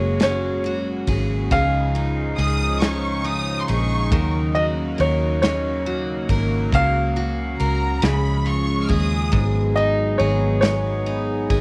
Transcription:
0.00 1.04 F#1 medium
0.00 7.99 C#3 medium
0.00 1.51 F#3 medium
0.00 1.49 G#3 medium
0.00 1.49 A#3 medium
0.00 0.63 F#4 medium
0.00 1.48 F#4 medium
0.00 1.08 G#4 medium
0.00 0.22 C#5 medium
0.20 1.98 C#4 medium
0.20 1.56 C#5 medium
0.20 snare loud
0.20 ride medium
0.64 1.61 F#4 medium
0.64 ride soft
1.07 1.49 G#1 medium
1.07 1.52 G#4 medium
1.07 kick medium
1.07 ride medium
1.51 2.34 C#2 loud
1.51 4.12 C#3 medium
1.51 4.09 F3 medium
1.51 4.10 G#3 medium
1.51 6.69 D#4 medium
1.51 2.37 G#4 medium
1.51 2.78 F5 medium
1.51 kick loud
1.51 ride medium
1.95 3.24 D#4 medium
1.95 ride soft
2.38 3.65 C#2 medium
2.38 3.68 G#4 medium
2.38 2.79 D#6 loud
2.38 ride medium
2.81 5.42 C#4 medium
2.81 3.24 C#6 medium
2.81 snare loud
2.81 ride medium
3.24 4.55 D#4 medium
3.24 3.62 D#6 loud
3.24 ride soft
3.61 3.68 C6 medium
3.68 4.10 A#1 medium
3.68 4.12 G#4 medium
3.68 4.33 C#6 medium
3.68 ride medium
4.09 4.95 D#2 medium
4.09 6.73 D#3 medium
4.09 7.98 F#3 medium
4.09 7.98 A#3 medium
4.09 4.98 A#4 medium
4.09 kick loud
4.09 ride medium
4.55 5.86 F#4 medium
4.55 4.65 D#5 medium
4.55 ride soft
4.98 6.26 D#2 medium
4.98 6.29 A#4 medium
4.98 5.40 C#5 medium
4.98 ride medium
5.42 8.93 C#4 medium
5.42 6.76 C#5 medium
5.42 snare loud
5.42 ride medium
5.86 6.82 F#4 medium
5.86 ride soft
6.29 6.70 G#1 medium
6.29 6.73 A#4 medium
6.29 kick medium
6.29 ride medium
6.72 7.56 C#2 loud
6.72 8.01 C#3 medium
6.72 8.02 F#4 medium
6.72 7.58 A#4 medium
6.72 8.00 F5 loud
6.72 kick loud
6.72 ride medium
7.16 8.12 F#4 medium
7.16 ride soft
7.59 8.01 C#2 medium
7.59 8.12 A#4 medium
7.59 7.99 A#5 medium
7.59 ride medium
8.02 8.86 C#2 loud
8.02 9.42 C#3 medium
8.02 9.32 F3 medium
8.02 9.32 G#3 medium
8.02 9.32 C#4 medium
8.02 11.61 G#4 loud
8.02 8.46 B5 medium
8.02 snare loud
8.02 ride medium
8.46 9.42 F4 medium
8.46 8.83 C#6 medium
8.46 ride soft
8.84 8.90 F6 medium
8.89 9.31 D#2 medium
8.89 9.33 G#4 medium
8.89 9.55 D#6 medium
8.89 kick medium
8.89 ride medium
9.32 10.16 G#1 medium
9.32 11.61 G#2 medium
9.32 11.61 F#3 medium
9.32 11.61 B3 medium
9.32 11.61 D#4 medium
9.32 10.19 G#4 medium
9.32 kick loud
9.32 ride medium
9.76 11.05 D#4 medium
9.76 10.21 D#5 medium
9.76 ride soft
10.18 11.46 G#1 medium
10.18 11.50 G#4 medium
10.18 10.59 C#5 medium
10.18 ride medium
10.61 11.61 B3 medium
10.61 11.61 C#5 medium
10.61 snare loud
10.61 ride medium
11.06 11.61 D#4 medium
11.06 ride soft
11.50 11.61 G#1 medium
11.50 11.61 G#4 medium
11.50 kick medium
11.50 ride medium

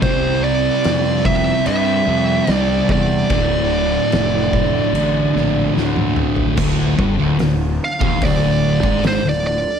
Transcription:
0.02 0.68 C2 loud
0.02 2.05 C3 medium
0.02 2.06 G3 loud
0.02 3.28 C4 medium
0.02 2.05 C4 loud
0.02 3.27 G4 medium
0.02 0.43 C5 loud
0.02 3.27 D5 loud
0.02 kick loud
0.02 crash medium
0.44 1.26 D5 loud
0.84 1.51 F2 medium
0.84 snare loud
0.84 crash medium
1.25 1.66 E5 loud
1.25 kick medium
1.66 2.00 G2 loud
1.66 3.28 C3 medium
1.66 3.28 G3 medium
1.66 3.29 C4 medium
1.66 2.54 E5 loud
1.66 crash medium
2.07 2.40 F2 medium
2.07 2.45 C3 medium
2.07 2.47 G3 medium
2.07 2.46 C4 loud
2.47 2.81 C2 medium
2.47 3.27 C3 medium
2.47 3.28 G3 medium
2.47 3.29 C4 medium
2.47 snare loud
2.47 crash medium
2.54 2.91 D5 loud
2.89 3.22 E2 loud
2.89 5.73 D5 medium
2.89 kick medium
3.29 3.96 D1 loud
3.29 5.32 D2 medium
3.29 5.33 A2 loud
3.29 6.54 D3 medium
3.29 5.32 D3 loud
3.29 6.54 A3 medium
3.29 6.55 E4 loud
3.29 kick loud
3.29 crash medium
4.12 4.78 F1 medium
4.12 snare loud
4.12 crash medium
4.53 kick medium
4.93 5.26 A1 loud
4.93 6.55 D2 medium
4.93 6.56 A2 medium
4.93 6.56 D3 loud
4.93 crash medium
5.34 5.68 A#1 medium
5.34 5.73 D2 medium
5.34 5.74 A2 medium
5.34 5.73 D3 loud
5.34 snare soft
5.74 6.55 D2 medium
5.74 6.42 D2 medium
5.74 6.55 A2 medium
5.74 6.56 D3 loud
5.74 snare medium
5.96 high tom medium
6.16 mid tom loud
6.36 floor tom medium
6.56 6.96 D1 medium
6.56 6.97 D2 loud
6.56 9.80 D3 medium
6.56 9.80 F4 medium
6.56 9.80 A4 medium
6.56 kick loud
6.56 crash loud
6.97 7.18 G1 loud
6.97 7.17 G2 loud
6.97 kick loud
7.18 7.39 D1 loud
7.18 7.38 D2 loud
7.39 7.78 D1 medium
7.39 7.72 D2 medium
7.39 snare loud
7.39 open hi-hat medium
7.84 8.22 F5 loud
8.00 8.20 D#1 loud
8.00 8.20 D#2 loud
8.00 kick loud
8.21 8.79 D1 loud
8.21 8.81 D2 loud
8.21 kick loud
8.21 open hi-hat medium
8.25 9.03 D5 medium
8.82 9.21 G#1 loud
8.82 9.22 G#2 medium
8.82 kick loud
9.03 9.25 C5 medium
9.03 snare loud
9.03 open hi-hat medium
9.25 9.63 D1 medium
9.25 9.57 D2 medium
9.29 9.46 D5 medium
9.47 9.80 D5 loud

